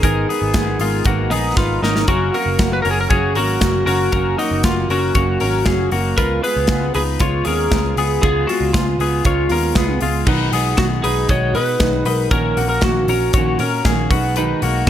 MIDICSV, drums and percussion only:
0, 0, Header, 1, 2, 480
1, 0, Start_track
1, 0, Key_signature, 6, "major"
1, 0, Tempo, 511945
1, 25, Time_signature, 4, 2, 24, 8
1, 13969, End_track
2, 0, Start_track
2, 0, Title_t, "Drums"
2, 30, Note_on_c, 9, 36, 93
2, 34, Note_on_c, 9, 42, 69
2, 124, Note_off_c, 9, 36, 0
2, 128, Note_off_c, 9, 42, 0
2, 284, Note_on_c, 9, 46, 57
2, 377, Note_off_c, 9, 46, 0
2, 505, Note_on_c, 9, 42, 68
2, 509, Note_on_c, 9, 38, 106
2, 510, Note_on_c, 9, 36, 102
2, 598, Note_off_c, 9, 42, 0
2, 603, Note_off_c, 9, 36, 0
2, 603, Note_off_c, 9, 38, 0
2, 745, Note_on_c, 9, 46, 59
2, 839, Note_off_c, 9, 46, 0
2, 980, Note_on_c, 9, 42, 58
2, 989, Note_on_c, 9, 36, 91
2, 1073, Note_off_c, 9, 42, 0
2, 1083, Note_off_c, 9, 36, 0
2, 1228, Note_on_c, 9, 46, 69
2, 1322, Note_off_c, 9, 46, 0
2, 1471, Note_on_c, 9, 36, 96
2, 1475, Note_on_c, 9, 38, 46
2, 1565, Note_off_c, 9, 36, 0
2, 1568, Note_off_c, 9, 38, 0
2, 1721, Note_on_c, 9, 38, 71
2, 1815, Note_off_c, 9, 38, 0
2, 1837, Note_on_c, 9, 38, 75
2, 1930, Note_off_c, 9, 38, 0
2, 1947, Note_on_c, 9, 42, 67
2, 1950, Note_on_c, 9, 36, 85
2, 2041, Note_off_c, 9, 42, 0
2, 2044, Note_off_c, 9, 36, 0
2, 2197, Note_on_c, 9, 46, 53
2, 2291, Note_off_c, 9, 46, 0
2, 2427, Note_on_c, 9, 42, 68
2, 2431, Note_on_c, 9, 36, 103
2, 2431, Note_on_c, 9, 38, 106
2, 2521, Note_off_c, 9, 42, 0
2, 2524, Note_off_c, 9, 36, 0
2, 2525, Note_off_c, 9, 38, 0
2, 2673, Note_on_c, 9, 46, 59
2, 2766, Note_off_c, 9, 46, 0
2, 2909, Note_on_c, 9, 42, 56
2, 2912, Note_on_c, 9, 36, 96
2, 3003, Note_off_c, 9, 42, 0
2, 3005, Note_off_c, 9, 36, 0
2, 3144, Note_on_c, 9, 46, 74
2, 3238, Note_off_c, 9, 46, 0
2, 3387, Note_on_c, 9, 38, 94
2, 3387, Note_on_c, 9, 42, 64
2, 3390, Note_on_c, 9, 36, 93
2, 3480, Note_off_c, 9, 42, 0
2, 3481, Note_off_c, 9, 38, 0
2, 3484, Note_off_c, 9, 36, 0
2, 3630, Note_on_c, 9, 46, 58
2, 3724, Note_off_c, 9, 46, 0
2, 3867, Note_on_c, 9, 42, 69
2, 3870, Note_on_c, 9, 36, 91
2, 3961, Note_off_c, 9, 42, 0
2, 3964, Note_off_c, 9, 36, 0
2, 4116, Note_on_c, 9, 46, 60
2, 4210, Note_off_c, 9, 46, 0
2, 4345, Note_on_c, 9, 42, 69
2, 4349, Note_on_c, 9, 36, 98
2, 4350, Note_on_c, 9, 38, 116
2, 4439, Note_off_c, 9, 42, 0
2, 4443, Note_off_c, 9, 36, 0
2, 4443, Note_off_c, 9, 38, 0
2, 4595, Note_on_c, 9, 46, 62
2, 4689, Note_off_c, 9, 46, 0
2, 4827, Note_on_c, 9, 42, 58
2, 4830, Note_on_c, 9, 36, 94
2, 4921, Note_off_c, 9, 42, 0
2, 4924, Note_off_c, 9, 36, 0
2, 5065, Note_on_c, 9, 46, 70
2, 5159, Note_off_c, 9, 46, 0
2, 5303, Note_on_c, 9, 38, 95
2, 5303, Note_on_c, 9, 42, 69
2, 5309, Note_on_c, 9, 36, 99
2, 5397, Note_off_c, 9, 38, 0
2, 5397, Note_off_c, 9, 42, 0
2, 5402, Note_off_c, 9, 36, 0
2, 5546, Note_on_c, 9, 46, 56
2, 5640, Note_off_c, 9, 46, 0
2, 5790, Note_on_c, 9, 42, 66
2, 5791, Note_on_c, 9, 36, 86
2, 5884, Note_off_c, 9, 42, 0
2, 5885, Note_off_c, 9, 36, 0
2, 6037, Note_on_c, 9, 46, 59
2, 6131, Note_off_c, 9, 46, 0
2, 6257, Note_on_c, 9, 42, 67
2, 6261, Note_on_c, 9, 38, 107
2, 6270, Note_on_c, 9, 36, 106
2, 6351, Note_off_c, 9, 42, 0
2, 6355, Note_off_c, 9, 38, 0
2, 6364, Note_off_c, 9, 36, 0
2, 6510, Note_on_c, 9, 46, 63
2, 6604, Note_off_c, 9, 46, 0
2, 6746, Note_on_c, 9, 42, 59
2, 6755, Note_on_c, 9, 36, 95
2, 6839, Note_off_c, 9, 42, 0
2, 6848, Note_off_c, 9, 36, 0
2, 6983, Note_on_c, 9, 46, 68
2, 7077, Note_off_c, 9, 46, 0
2, 7233, Note_on_c, 9, 42, 64
2, 7234, Note_on_c, 9, 38, 96
2, 7235, Note_on_c, 9, 36, 97
2, 7327, Note_off_c, 9, 38, 0
2, 7327, Note_off_c, 9, 42, 0
2, 7329, Note_off_c, 9, 36, 0
2, 7475, Note_on_c, 9, 46, 58
2, 7569, Note_off_c, 9, 46, 0
2, 7717, Note_on_c, 9, 36, 90
2, 7721, Note_on_c, 9, 42, 66
2, 7811, Note_off_c, 9, 36, 0
2, 7815, Note_off_c, 9, 42, 0
2, 7962, Note_on_c, 9, 46, 57
2, 8055, Note_off_c, 9, 46, 0
2, 8197, Note_on_c, 9, 36, 99
2, 8198, Note_on_c, 9, 42, 68
2, 8202, Note_on_c, 9, 38, 107
2, 8291, Note_off_c, 9, 36, 0
2, 8291, Note_off_c, 9, 42, 0
2, 8296, Note_off_c, 9, 38, 0
2, 8440, Note_on_c, 9, 46, 60
2, 8534, Note_off_c, 9, 46, 0
2, 8669, Note_on_c, 9, 42, 58
2, 8675, Note_on_c, 9, 36, 86
2, 8763, Note_off_c, 9, 42, 0
2, 8768, Note_off_c, 9, 36, 0
2, 8902, Note_on_c, 9, 46, 74
2, 8996, Note_off_c, 9, 46, 0
2, 9145, Note_on_c, 9, 38, 103
2, 9145, Note_on_c, 9, 42, 66
2, 9150, Note_on_c, 9, 36, 102
2, 9239, Note_off_c, 9, 38, 0
2, 9239, Note_off_c, 9, 42, 0
2, 9243, Note_off_c, 9, 36, 0
2, 9381, Note_on_c, 9, 46, 57
2, 9475, Note_off_c, 9, 46, 0
2, 9624, Note_on_c, 9, 49, 77
2, 9628, Note_on_c, 9, 36, 94
2, 9718, Note_off_c, 9, 49, 0
2, 9722, Note_off_c, 9, 36, 0
2, 9870, Note_on_c, 9, 46, 58
2, 9964, Note_off_c, 9, 46, 0
2, 10102, Note_on_c, 9, 42, 67
2, 10107, Note_on_c, 9, 36, 102
2, 10107, Note_on_c, 9, 38, 114
2, 10196, Note_off_c, 9, 42, 0
2, 10200, Note_off_c, 9, 38, 0
2, 10201, Note_off_c, 9, 36, 0
2, 10351, Note_on_c, 9, 46, 60
2, 10444, Note_off_c, 9, 46, 0
2, 10584, Note_on_c, 9, 42, 59
2, 10588, Note_on_c, 9, 36, 94
2, 10678, Note_off_c, 9, 42, 0
2, 10682, Note_off_c, 9, 36, 0
2, 10827, Note_on_c, 9, 46, 74
2, 10921, Note_off_c, 9, 46, 0
2, 11064, Note_on_c, 9, 38, 95
2, 11064, Note_on_c, 9, 42, 67
2, 11066, Note_on_c, 9, 36, 102
2, 11157, Note_off_c, 9, 38, 0
2, 11157, Note_off_c, 9, 42, 0
2, 11160, Note_off_c, 9, 36, 0
2, 11302, Note_on_c, 9, 46, 62
2, 11396, Note_off_c, 9, 46, 0
2, 11542, Note_on_c, 9, 42, 68
2, 11544, Note_on_c, 9, 36, 88
2, 11636, Note_off_c, 9, 42, 0
2, 11638, Note_off_c, 9, 36, 0
2, 11786, Note_on_c, 9, 46, 60
2, 11880, Note_off_c, 9, 46, 0
2, 12013, Note_on_c, 9, 42, 73
2, 12017, Note_on_c, 9, 38, 123
2, 12024, Note_on_c, 9, 36, 105
2, 12107, Note_off_c, 9, 42, 0
2, 12111, Note_off_c, 9, 38, 0
2, 12117, Note_off_c, 9, 36, 0
2, 12265, Note_on_c, 9, 46, 60
2, 12359, Note_off_c, 9, 46, 0
2, 12500, Note_on_c, 9, 42, 61
2, 12506, Note_on_c, 9, 36, 100
2, 12594, Note_off_c, 9, 42, 0
2, 12599, Note_off_c, 9, 36, 0
2, 12741, Note_on_c, 9, 46, 72
2, 12835, Note_off_c, 9, 46, 0
2, 12985, Note_on_c, 9, 38, 102
2, 12985, Note_on_c, 9, 42, 66
2, 12987, Note_on_c, 9, 36, 99
2, 13078, Note_off_c, 9, 38, 0
2, 13078, Note_off_c, 9, 42, 0
2, 13080, Note_off_c, 9, 36, 0
2, 13225, Note_on_c, 9, 36, 93
2, 13225, Note_on_c, 9, 46, 57
2, 13319, Note_off_c, 9, 36, 0
2, 13319, Note_off_c, 9, 46, 0
2, 13462, Note_on_c, 9, 42, 73
2, 13556, Note_off_c, 9, 42, 0
2, 13708, Note_on_c, 9, 46, 61
2, 13802, Note_off_c, 9, 46, 0
2, 13969, End_track
0, 0, End_of_file